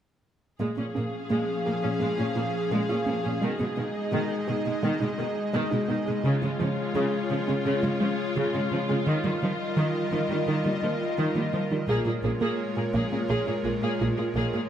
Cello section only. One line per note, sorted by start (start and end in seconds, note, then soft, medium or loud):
0.60 0.67 A#2 soft
0.78 0.85 A#2 soft
0.96 1.03 A#2 soft
1.31 1.38 A#2 soft
1.67 1.74 A#2 soft
1.84 1.91 A#2 soft
2.01 2.08 A#2 soft
2.19 2.26 A#2 soft
2.35 2.43 A#2 soft
2.72 2.79 A#2 soft
2.90 2.97 A#2 soft
3.07 3.14 A#2 soft
3.25 3.32 A#2 soft
3.42 3.49 B2 medium
3.60 3.67 B2 soft
3.77 3.84 B2 soft
4.13 4.20 B2 medium
4.48 4.55 B2 soft
4.66 4.73 B2 soft
4.83 4.90 B2 medium
5.01 5.08 B2 soft
5.19 5.26 B2 soft
5.54 5.61 B2 medium
5.72 5.79 B2 soft
5.90 5.97 B2 soft
6.08 6.15 B2 soft
6.25 6.32 C#3 medium
6.43 6.50 C#3 soft
6.61 6.68 C#3 soft
6.95 7.02 C#3 medium
7.31 7.38 C#3 soft
7.48 7.55 C#3 soft
7.66 7.73 C#3 medium
7.83 7.90 C#3 soft
8.01 8.08 C#3 soft
8.37 8.44 C#3 medium
8.53 8.61 C#3 soft
8.71 8.78 C#3 soft
8.89 8.96 C#3 soft
9.06 9.14 D#3 medium
9.24 9.31 D#3 soft
9.42 9.49 D#3 soft
9.78 9.85 D#3 medium
10.12 10.20 D#3 soft
10.30 10.37 D#3 soft
10.47 10.54 D#3 medium
10.65 10.72 D#3 soft
10.83 10.90 D#3 soft
11.18 11.25 D#3 soft
11.36 11.43 D#3 soft
11.53 11.61 D#3 soft
11.71 11.78 D#3 soft
11.88 11.95 A#2 medium
12.06 12.13 A#2 soft
12.23 12.31 A#2 soft
12.41 12.48 A#2 medium
12.76 12.84 A#2 soft
12.94 13.02 A#2 medium
13.12 13.19 A#2 soft
13.29 13.36 A#2 soft
13.47 13.55 A#2 soft
13.65 13.72 A#2 soft
13.82 13.90 A#2 soft
14.01 14.08 A#2 soft
14.19 14.26 A#2 soft
14.37 14.44 A#2 medium
14.55 14.62 A#2 soft